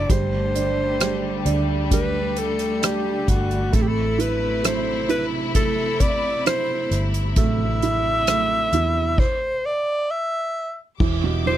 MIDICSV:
0, 0, Header, 1, 6, 480
1, 0, Start_track
1, 0, Tempo, 909091
1, 50, Time_signature, 4, 2, 24, 8
1, 6112, End_track
2, 0, Start_track
2, 0, Title_t, "Alto saxophone"
2, 0, Program_c, 0, 65
2, 58, Note_on_c, 0, 72, 99
2, 850, Note_off_c, 0, 72, 0
2, 1019, Note_on_c, 0, 71, 89
2, 1259, Note_on_c, 0, 69, 81
2, 1267, Note_off_c, 0, 71, 0
2, 1500, Note_on_c, 0, 67, 81
2, 1508, Note_off_c, 0, 69, 0
2, 1736, Note_on_c, 0, 66, 77
2, 1744, Note_off_c, 0, 67, 0
2, 1980, Note_on_c, 0, 69, 79
2, 1987, Note_off_c, 0, 66, 0
2, 2015, Note_on_c, 0, 67, 71
2, 2023, Note_off_c, 0, 69, 0
2, 2048, Note_on_c, 0, 69, 88
2, 2056, Note_off_c, 0, 67, 0
2, 2221, Note_on_c, 0, 71, 87
2, 2229, Note_off_c, 0, 69, 0
2, 2455, Note_on_c, 0, 72, 92
2, 2462, Note_off_c, 0, 71, 0
2, 2690, Note_off_c, 0, 72, 0
2, 2693, Note_on_c, 0, 71, 86
2, 2778, Note_off_c, 0, 71, 0
2, 2935, Note_on_c, 0, 69, 98
2, 3178, Note_on_c, 0, 74, 104
2, 3185, Note_off_c, 0, 69, 0
2, 3412, Note_off_c, 0, 74, 0
2, 3415, Note_on_c, 0, 72, 99
2, 3729, Note_off_c, 0, 72, 0
2, 3897, Note_on_c, 0, 76, 115
2, 4853, Note_on_c, 0, 72, 107
2, 4861, Note_off_c, 0, 76, 0
2, 5099, Note_on_c, 0, 74, 102
2, 5106, Note_off_c, 0, 72, 0
2, 5336, Note_on_c, 0, 76, 91
2, 5344, Note_off_c, 0, 74, 0
2, 5693, Note_off_c, 0, 76, 0
2, 6057, Note_on_c, 0, 72, 96
2, 6112, Note_off_c, 0, 72, 0
2, 6112, End_track
3, 0, Start_track
3, 0, Title_t, "String section"
3, 0, Program_c, 1, 48
3, 0, Note_on_c, 1, 50, 66
3, 44, Note_on_c, 1, 57, 64
3, 48, Note_on_c, 1, 55, 74
3, 1948, Note_off_c, 1, 50, 0
3, 1950, Note_off_c, 1, 55, 0
3, 1966, Note_on_c, 1, 64, 76
3, 1967, Note_on_c, 1, 48, 66
3, 4826, Note_off_c, 1, 57, 0
3, 4827, Note_off_c, 1, 48, 0
3, 4827, Note_off_c, 1, 64, 0
3, 5813, Note_on_c, 1, 67, 79
3, 5813, Note_on_c, 1, 76, 64
3, 5814, Note_on_c, 1, 86, 82
3, 6112, Note_off_c, 1, 67, 0
3, 6112, Note_off_c, 1, 76, 0
3, 6112, Note_off_c, 1, 86, 0
3, 6112, End_track
4, 0, Start_track
4, 0, Title_t, "Felt piano"
4, 0, Program_c, 2, 0
4, 0, Control_c, 2, 64, 127
4, 0, Note_on_c, 2, 57, 47
4, 0, Note_on_c, 2, 66, 45
4, 52, Note_on_c, 2, 55, 61
4, 57, Control_c, 2, 64, 0
4, 61, Note_off_c, 2, 57, 0
4, 61, Note_off_c, 2, 66, 0
4, 156, Control_c, 2, 64, 127
4, 292, Note_on_c, 2, 62, 51
4, 523, Note_off_c, 2, 55, 0
4, 531, Note_on_c, 2, 55, 49
4, 760, Note_off_c, 2, 62, 0
4, 768, Note_on_c, 2, 62, 49
4, 1002, Note_off_c, 2, 55, 0
4, 1010, Note_on_c, 2, 55, 48
4, 1482, Note_off_c, 2, 62, 0
4, 1490, Note_on_c, 2, 62, 44
4, 1949, Note_off_c, 2, 55, 0
4, 1955, Note_off_c, 2, 62, 0
4, 1968, Note_on_c, 2, 57, 63
4, 1977, Control_c, 2, 64, 0
4, 2079, Control_c, 2, 64, 127
4, 2209, Note_on_c, 2, 64, 49
4, 2440, Note_off_c, 2, 57, 0
4, 2448, Note_on_c, 2, 57, 49
4, 2679, Note_off_c, 2, 64, 0
4, 2687, Note_on_c, 2, 64, 54
4, 2922, Note_off_c, 2, 57, 0
4, 2930, Note_on_c, 2, 57, 47
4, 3404, Note_off_c, 2, 64, 0
4, 3412, Note_on_c, 2, 64, 46
4, 3869, Note_off_c, 2, 57, 0
4, 3893, Note_on_c, 2, 57, 60
4, 4126, Note_off_c, 2, 64, 0
4, 4134, Note_on_c, 2, 64, 55
4, 4363, Note_off_c, 2, 57, 0
4, 4371, Note_on_c, 2, 57, 54
4, 4606, Note_off_c, 2, 64, 0
4, 4614, Note_on_c, 2, 64, 56
4, 4836, Note_off_c, 2, 57, 0
4, 4845, Note_off_c, 2, 64, 0
4, 4856, Control_c, 2, 64, 0
4, 5809, Note_on_c, 2, 52, 61
4, 5899, Control_c, 2, 64, 127
4, 5933, Note_on_c, 2, 47, 58
4, 6043, Note_off_c, 2, 52, 0
4, 6051, Note_on_c, 2, 52, 58
4, 6112, Note_off_c, 2, 47, 0
4, 6112, Note_off_c, 2, 52, 0
4, 6112, End_track
5, 0, Start_track
5, 0, Title_t, "Fingered electric bass"
5, 0, Program_c, 3, 33
5, 50, Note_on_c, 3, 31, 88
5, 749, Note_off_c, 3, 31, 0
5, 768, Note_on_c, 3, 38, 82
5, 1707, Note_off_c, 3, 38, 0
5, 1732, Note_on_c, 3, 31, 79
5, 1954, Note_off_c, 3, 31, 0
5, 1972, Note_on_c, 3, 33, 92
5, 3630, Note_off_c, 3, 33, 0
5, 3649, Note_on_c, 3, 31, 92
5, 3873, Note_off_c, 3, 31, 0
5, 3889, Note_on_c, 3, 33, 100
5, 4588, Note_off_c, 3, 33, 0
5, 4608, Note_on_c, 3, 40, 82
5, 4837, Note_off_c, 3, 40, 0
5, 5808, Note_on_c, 3, 28, 96
5, 6112, Note_off_c, 3, 28, 0
5, 6112, End_track
6, 0, Start_track
6, 0, Title_t, "Drums"
6, 51, Note_on_c, 9, 36, 104
6, 52, Note_on_c, 9, 42, 76
6, 103, Note_off_c, 9, 36, 0
6, 105, Note_off_c, 9, 42, 0
6, 293, Note_on_c, 9, 42, 66
6, 346, Note_off_c, 9, 42, 0
6, 530, Note_on_c, 9, 42, 80
6, 535, Note_on_c, 9, 37, 103
6, 583, Note_off_c, 9, 42, 0
6, 588, Note_off_c, 9, 37, 0
6, 770, Note_on_c, 9, 42, 60
6, 823, Note_off_c, 9, 42, 0
6, 1010, Note_on_c, 9, 36, 83
6, 1011, Note_on_c, 9, 42, 86
6, 1063, Note_off_c, 9, 36, 0
6, 1064, Note_off_c, 9, 42, 0
6, 1249, Note_on_c, 9, 42, 64
6, 1302, Note_off_c, 9, 42, 0
6, 1367, Note_on_c, 9, 42, 48
6, 1420, Note_off_c, 9, 42, 0
6, 1493, Note_on_c, 9, 42, 80
6, 1498, Note_on_c, 9, 37, 97
6, 1546, Note_off_c, 9, 42, 0
6, 1551, Note_off_c, 9, 37, 0
6, 1732, Note_on_c, 9, 36, 79
6, 1733, Note_on_c, 9, 42, 64
6, 1785, Note_off_c, 9, 36, 0
6, 1786, Note_off_c, 9, 42, 0
6, 1853, Note_on_c, 9, 42, 44
6, 1905, Note_off_c, 9, 42, 0
6, 1971, Note_on_c, 9, 42, 77
6, 1972, Note_on_c, 9, 36, 107
6, 2024, Note_off_c, 9, 36, 0
6, 2024, Note_off_c, 9, 42, 0
6, 2216, Note_on_c, 9, 42, 66
6, 2268, Note_off_c, 9, 42, 0
6, 2452, Note_on_c, 9, 42, 85
6, 2457, Note_on_c, 9, 37, 99
6, 2505, Note_off_c, 9, 42, 0
6, 2509, Note_off_c, 9, 37, 0
6, 2690, Note_on_c, 9, 42, 59
6, 2742, Note_off_c, 9, 42, 0
6, 2930, Note_on_c, 9, 36, 85
6, 2930, Note_on_c, 9, 42, 85
6, 2982, Note_off_c, 9, 42, 0
6, 2983, Note_off_c, 9, 36, 0
6, 3169, Note_on_c, 9, 42, 66
6, 3170, Note_on_c, 9, 36, 76
6, 3222, Note_off_c, 9, 42, 0
6, 3223, Note_off_c, 9, 36, 0
6, 3412, Note_on_c, 9, 42, 80
6, 3417, Note_on_c, 9, 37, 108
6, 3465, Note_off_c, 9, 42, 0
6, 3470, Note_off_c, 9, 37, 0
6, 3651, Note_on_c, 9, 42, 72
6, 3655, Note_on_c, 9, 37, 35
6, 3704, Note_off_c, 9, 42, 0
6, 3708, Note_off_c, 9, 37, 0
6, 3770, Note_on_c, 9, 42, 45
6, 3823, Note_off_c, 9, 42, 0
6, 3887, Note_on_c, 9, 42, 78
6, 3889, Note_on_c, 9, 36, 108
6, 3940, Note_off_c, 9, 42, 0
6, 3942, Note_off_c, 9, 36, 0
6, 4131, Note_on_c, 9, 42, 69
6, 4184, Note_off_c, 9, 42, 0
6, 4368, Note_on_c, 9, 42, 89
6, 4372, Note_on_c, 9, 37, 108
6, 4420, Note_off_c, 9, 42, 0
6, 4425, Note_off_c, 9, 37, 0
6, 4608, Note_on_c, 9, 42, 63
6, 4661, Note_off_c, 9, 42, 0
6, 4848, Note_on_c, 9, 36, 96
6, 4849, Note_on_c, 9, 49, 78
6, 4901, Note_off_c, 9, 36, 0
6, 4901, Note_off_c, 9, 49, 0
6, 5808, Note_on_c, 9, 49, 96
6, 5809, Note_on_c, 9, 36, 111
6, 5861, Note_off_c, 9, 49, 0
6, 5862, Note_off_c, 9, 36, 0
6, 6050, Note_on_c, 9, 51, 62
6, 6103, Note_off_c, 9, 51, 0
6, 6112, End_track
0, 0, End_of_file